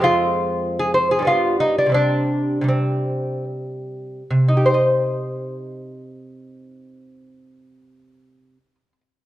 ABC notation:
X:1
M:3/4
L:1/16
Q:1/4=72
K:Cm
V:1 name="Lute"
F4- F A c A F2 E D | D4 C4 z4 | [C,EGce]12- | [C,EGce]12 |]
V:2 name="Lute" clef=bass
[F,,A,C]8 [G,,G,=B,]4 | [C,G,C]4 [C,G,]8 | z12 | z12 |]